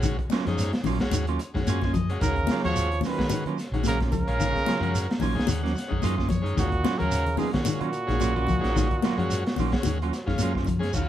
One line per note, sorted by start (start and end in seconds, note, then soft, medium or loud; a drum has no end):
0.00 0.16 A#1 medium
0.00 0.19 D#3 medium
0.00 0.17 G#3 medium
0.00 0.17 C#4 medium
0.00 0.17 F#4 loud
0.00 kick medium
0.00 closed hi-hat medium
0.00 shekere medium
0.19 muted clean electric guitar stroke soft
0.19 kick medium
0.19 closed hi-hat soft
0.30 0.46 F#3 medium
0.30 0.46 A#3 loud
0.30 0.46 C#4 medium
0.30 0.46 F4 medium
0.30 snare medium
0.30 closed hi-hat medium
0.30 high conga medium
0.30 shekere soft
0.45 0.71 F#2 medium
0.45 0.60 F3 medium
0.45 0.72 G#3 loud
0.45 0.72 C#4 medium
0.45 0.72 D#4 loud
0.45 snare soft
0.45 closed hi-hat soft
0.58 snare soft
0.58 closed hi-hat medium
0.58 shekere medium
0.73 muted clean electric guitar stroke soft
0.73 snare medium
0.73 closed hi-hat soft
0.84 0.99 A#1 medium
0.84 1.00 D#3 medium
0.84 1.00 F#3 medium
0.84 1.00 A#3 medium
0.84 1.00 C#4 medium
0.84 0.99 F4 medium
0.84 open hi-hat medium
0.84 high conga medium
0.84 low conga loud
0.84 shekere soft
1.00 1.26 G#3 medium
1.00 1.26 C#4 medium
1.00 1.26 F#4 loud
1.00 muted clean electric guitar stroke soft
1.00 kick medium
1.00 snare medium
1.00 closed hi-hat soft
1.11 1.37 D#2 loud
1.11 1.28 D#3 medium
1.11 muted clean electric guitar stroke soft
1.11 closed hi-hat medium
1.11 high conga medium
1.11 shekere medium
1.27 1.40 F#3 medium
1.27 1.40 A#3 medium
1.27 1.40 C#4 medium
1.27 1.40 F4 medium
1.27 closed hi-hat soft
1.39 closed hi-hat medium
1.39 shekere soft
1.54 1.66 F#2 medium
1.54 1.71 D#3 medium
1.54 1.80 G#3 medium
1.54 1.80 C#4 medium
1.54 1.80 F#4 medium
1.54 kick medium
1.54 snare soft
1.67 2.17 F#2 loud
1.67 1.82 F#3 medium
1.67 1.83 A#3 medium
1.67 1.83 C#4 medium
1.67 1.83 F4 medium
1.67 1.92 G#5 medium
1.67 closed hi-hat medium
1.67 high conga medium
1.67 shekere medium
1.82 1.95 A#3 soft
1.82 1.95 C#4 medium
1.82 1.95 F4 medium
1.82 kick medium
1.82 snare soft
1.82 high conga medium
1.93 2.09 F3 medium
1.93 2.19 D#5 medium
1.93 muted clean electric guitar stroke soft
1.93 kick medium
1.93 closed hi-hat medium
1.93 low conga medium
1.93 shekere soft
2.09 2.35 G#3 medium
2.09 2.35 C#4 medium
2.09 2.36 F#4 medium
2.09 muted clean electric guitar stroke soft
2.09 closed hi-hat soft
2.21 2.47 D#2 medium
2.21 2.63 C#3 medium
2.21 2.37 D#3 medium
2.21 2.61 A#4 loud
2.21 kick medium
2.21 closed hi-hat medium
2.21 shekere medium
2.36 muted clean electric guitar stroke soft
2.36 kick medium
2.36 closed hi-hat soft
2.47 2.65 A#3 medium
2.47 snare medium
2.47 closed hi-hat medium
2.47 high conga loud
2.47 shekere soft
2.51 2.65 F#3 medium
2.51 2.64 C#4 medium
2.51 2.64 F4 medium
2.64 2.75 D#2 medium
2.64 2.79 F3 medium
2.64 3.01 F3 loud
2.64 2.89 G#3 medium
2.64 2.90 C#4 medium
2.64 2.90 F#4 medium
2.64 3.01 C#5 loud
2.64 muted clean electric guitar stroke soft
2.64 snare soft
2.64 closed hi-hat soft
2.76 3.02 D#2 medium
2.76 closed hi-hat medium
2.76 shekere medium
2.91 muted clean electric guitar stroke soft
2.91 closed hi-hat soft
3.01 3.19 F#3 medium
3.01 snare soft
3.01 open hi-hat medium
3.01 high conga medium
3.01 low conga medium
3.01 shekere soft
3.05 3.55 D#3 medium
3.05 3.19 A#3 medium
3.05 3.19 C#4 medium
3.05 3.20 F4 medium
3.05 3.56 B4 medium
3.18 3.44 D#3 medium
3.18 3.44 G#3 medium
3.18 3.44 C#4 medium
3.18 3.44 F#4 medium
3.18 muted clean electric guitar stroke soft
3.18 kick medium
3.18 snare medium
3.18 closed hi-hat soft
3.30 3.47 D#3 medium
3.30 muted clean electric guitar stroke soft
3.30 closed hi-hat medium
3.30 high conga loud
3.30 shekere medium
3.46 3.57 D#3 medium
3.46 3.58 F#3 medium
3.46 3.59 A#3 medium
3.46 3.58 C#4 medium
3.46 3.58 F4 medium
3.46 closed hi-hat soft
3.58 muted clean electric guitar stroke soft
3.58 snare soft
3.58 closed hi-hat medium
3.58 shekere soft
3.72 4.13 A#1 medium
3.72 3.89 D#3 medium
3.72 3.99 G#3 medium
3.72 3.99 C#4 medium
3.72 3.99 F#4 medium
3.72 closed hi-hat soft
3.83 3.98 C#3 medium
3.83 4.01 F#3 medium
3.83 4.01 A#3 medium
3.83 4.01 C#4 medium
3.83 closed hi-hat medium
3.83 high conga medium
3.83 shekere medium
3.88 3.99 A#4 loud
4.00 4.13 A#3 soft
4.00 4.13 C#4 soft
4.00 4.13 F4 soft
4.00 kick medium
4.00 snare soft
4.00 closed hi-hat soft
4.12 4.26 C#2 loud
4.12 5.18 C#3 loud
4.12 4.28 F3 medium
4.12 5.18 A#4 loud
4.12 muted clean electric guitar stroke soft
4.12 kick medium
4.12 closed hi-hat medium
4.12 low conga medium
4.12 shekere soft
4.27 4.53 A#1 medium
4.27 4.53 G#3 medium
4.27 4.53 C#4 medium
4.27 4.53 F4 medium
4.27 muted clean electric guitar stroke soft
4.27 closed hi-hat soft
4.40 4.55 D#3 loud
4.40 kick medium
4.40 snare soft
4.40 closed hi-hat medium
4.40 shekere medium
4.55 muted clean electric guitar stroke soft
4.55 kick medium
4.55 snare soft
4.55 closed hi-hat soft
4.66 4.82 F#3 medium
4.66 4.82 C#4 medium
4.66 4.82 F4 medium
4.66 snare medium
4.66 closed hi-hat medium
4.66 high conga loud
4.66 shekere soft
4.80 5.06 F#2 medium
4.80 4.97 F3 medium
4.80 5.07 G#3 medium
4.80 5.07 C#4 medium
4.80 5.07 F#4 loud
4.80 muted clean electric guitar stroke soft
4.80 closed hi-hat soft
4.95 closed hi-hat medium
4.95 shekere loud
5.10 muted clean electric guitar stroke medium
5.10 snare medium
5.10 closed hi-hat soft
5.20 5.35 A#1 medium
5.20 5.36 D#3 medium
5.20 5.36 F#3 medium
5.20 5.36 A#3 medium
5.20 5.35 C#4 medium
5.20 5.35 F4 medium
5.20 5.47 G#5 medium
5.20 open hi-hat medium
5.20 high conga medium
5.20 low conga medium
5.20 shekere soft
5.35 5.61 G#3 medium
5.35 5.62 C#4 medium
5.35 5.62 D#4 loud
5.35 muted clean electric guitar stroke medium
5.35 kick medium
5.35 closed hi-hat soft
5.39 snare medium
5.47 5.73 D#2 loud
5.47 5.63 D#3 medium
5.47 5.99 F#5 medium
5.47 muted clean electric guitar stroke soft
5.47 closed hi-hat medium
5.47 high conga loud
5.47 shekere medium
5.63 5.76 F#3 medium
5.63 5.74 A#3 medium
5.63 5.75 C#4 medium
5.63 snare soft
5.63 closed hi-hat soft
5.76 muted clean electric guitar stroke soft
5.76 snare soft
5.76 closed hi-hat medium
5.76 shekere soft
5.88 6.06 D#3 medium
5.88 6.15 G#3 medium
5.88 6.15 C#4 medium
5.88 6.16 D#4 medium
5.88 kick medium
5.92 6.03 F#2 loud
6.02 6.54 F#2 loud
6.02 6.18 F#3 medium
6.02 6.18 A#3 medium
6.02 6.17 C#4 medium
6.02 6.17 F4 medium
6.02 6.28 D#5 medium
6.02 closed hi-hat medium
6.02 high conga medium
6.02 shekere medium
6.18 6.29 A#3 medium
6.18 6.29 C#4 medium
6.18 6.29 F4 medium
6.18 kick medium
6.18 snare soft
6.29 6.44 F3 medium
6.29 6.55 C#5 medium
6.29 muted clean electric guitar stroke soft
6.29 kick medium
6.29 closed hi-hat medium
6.29 high conga medium
6.29 low conga medium
6.29 shekere soft
6.42 6.69 G#3 medium
6.42 6.70 C#4 medium
6.42 6.70 D#4 medium
6.42 muted clean electric guitar stroke soft
6.42 closed hi-hat soft
6.57 6.83 D#2 medium
6.57 7.04 A#2 medium
6.57 6.72 D#3 loud
6.57 7.00 F#4 loud
6.57 kick medium
6.57 snare soft
6.57 closed hi-hat medium
6.57 shekere medium
6.72 muted clean electric guitar stroke soft
6.72 kick medium
6.72 closed hi-hat soft
6.83 6.99 F#3 medium
6.83 6.97 C#4 medium
6.83 6.97 F4 medium
6.83 muted clean electric guitar stroke medium
6.83 snare medium
6.83 closed hi-hat medium
6.83 high conga loud
6.83 shekere soft
6.98 7.12 D#2 medium
6.98 7.38 C#3 medium
6.98 7.15 F3 medium
6.98 7.25 G#3 medium
6.98 7.25 C#4 medium
6.98 7.25 F#4 medium
6.98 7.38 A#4 loud
6.98 muted clean electric guitar stroke soft
6.98 closed hi-hat soft
7.11 7.38 D#2 medium
7.11 closed hi-hat medium
7.11 shekere loud
7.25 muted clean electric guitar stroke soft
7.25 closed hi-hat soft
7.25 low conga medium
7.37 7.51 B2 medium
7.37 7.54 D#3 medium
7.37 7.53 F#3 medium
7.37 7.53 A#3 medium
7.37 7.53 C#4 medium
7.37 7.53 F4 medium
7.37 7.52 G#4 medium
7.37 open hi-hat medium
7.37 high conga medium
7.37 low conga medium
7.37 shekere soft
7.52 10.34 A#2 medium
7.52 7.80 D#3 medium
7.52 7.80 G#3 medium
7.52 7.80 C#4 medium
7.52 10.34 F#4 loud
7.52 7.80 F#4 medium
7.52 muted clean electric guitar stroke soft
7.52 kick medium
7.52 snare medium
7.52 closed hi-hat soft
7.65 7.83 D#3 medium
7.65 muted clean electric guitar stroke soft
7.65 closed hi-hat medium
7.65 high conga loud
7.65 shekere medium
7.80 7.93 D#3 medium
7.80 7.92 F#3 medium
7.80 7.92 A#3 medium
7.80 7.92 C#4 medium
7.80 7.92 F4 medium
7.80 closed hi-hat soft
7.93 muted clean electric guitar stroke soft
7.93 closed hi-hat soft
7.93 shekere soft
8.07 8.49 A#1 medium
8.07 8.25 D#3 medium
8.07 8.34 G#3 medium
8.07 8.34 C#4 medium
8.07 8.34 G#4 medium
8.07 snare soft
8.07 closed hi-hat soft
8.20 8.36 F#3 medium
8.20 8.35 A#3 medium
8.20 8.35 C#4 medium
8.20 8.34 F4 medium
8.20 closed hi-hat medium
8.20 high conga loud
8.20 shekere medium
8.36 8.47 A#3 soft
8.36 8.48 C#4 soft
8.36 8.48 F4 medium
8.36 kick medium
8.36 closed hi-hat soft
8.47 8.63 C#2 medium
8.47 8.64 F3 medium
8.47 muted clean electric guitar stroke soft
8.47 kick medium
8.47 closed hi-hat medium
8.47 low conga medium
8.47 shekere soft
8.60 8.87 G#3 loud
8.60 8.88 C#4 medium
8.60 8.88 D#4 loud
8.60 muted clean electric guitar stroke soft
8.64 8.89 A#1 medium
8.64 snare soft
8.64 closed hi-hat soft
8.76 8.91 D#3 loud
8.76 kick medium
8.76 snare soft
8.76 closed hi-hat medium
8.76 shekere medium
8.91 muted clean electric guitar stroke soft
8.91 kick medium
8.91 closed hi-hat soft
9.02 9.19 F#3 medium
9.02 9.19 A#3 medium
9.02 9.18 F4 medium
9.02 snare medium
9.02 closed hi-hat medium
9.02 high conga loud
9.02 shekere soft
9.17 9.43 F#2 medium
9.17 9.34 F3 medium
9.17 9.43 G#3 loud
9.17 9.44 C#4 medium
9.17 9.44 F#4 loud
9.17 muted clean electric guitar stroke medium
9.17 closed hi-hat soft
9.30 closed hi-hat medium
9.30 shekere medium
9.46 muted clean electric guitar stroke medium
9.46 snare medium
9.46 closed hi-hat soft
9.56 9.72 A#1 medium
9.56 9.74 D#3 medium
9.56 9.73 F#3 medium
9.56 9.74 A#3 medium
9.56 9.73 C#4 medium
9.56 9.73 F4 medium
9.56 open hi-hat medium
9.56 high conga loud
9.56 low conga loud
9.56 shekere soft
9.72 9.98 G#3 medium
9.72 9.99 C#4 medium
9.72 9.98 F#4 medium
9.72 muted clean electric guitar stroke soft
9.72 kick medium
9.72 snare medium
9.72 closed hi-hat soft
9.83 10.10 D#2 loud
9.83 10.01 D#3 medium
9.83 muted clean electric guitar stroke soft
9.83 closed hi-hat medium
9.83 high conga loud
9.83 shekere medium
10.02 10.14 F#3 medium
10.02 10.14 A#3 medium
10.02 10.14 C#4 medium
10.02 10.13 F4 medium
10.02 closed hi-hat soft
10.13 muted clean electric guitar stroke soft
10.13 snare soft
10.13 closed hi-hat medium
10.13 shekere soft
10.26 10.39 F#2 loud
10.26 10.42 D#3 medium
10.26 10.52 G#3 medium
10.26 10.53 C#4 medium
10.26 10.53 F4 medium
10.26 kick medium
10.26 snare soft
10.38 10.90 F#2 medium
10.38 10.55 F#3 medium
10.38 10.56 A#3 medium
10.38 closed hi-hat medium
10.38 high conga medium
10.38 shekere medium
10.42 10.56 C#4 medium
10.42 10.55 F4 medium
10.55 10.67 A#3 soft
10.55 10.68 C#4 soft
10.55 10.68 F4 medium
10.55 kick medium
10.55 snare soft
10.65 10.83 F3 medium
10.65 muted clean electric guitar stroke soft
10.65 kick medium
10.65 closed hi-hat medium
10.65 low conga medium
10.65 shekere soft
10.79 10.93 G#3 medium
10.79 10.92 C#4 medium
10.79 10.93 G#4 loud
10.79 muted clean electric guitar stroke soft
10.79 closed hi-hat soft
10.84 snare soft
10.93 11.09 D#2 medium
10.93 11.09 D#3 medium
10.93 11.09 F#3 medium
10.93 11.09 C#4 soft
10.93 11.09 F4 medium
10.93 kick medium
10.93 crash medium
10.93 shekere medium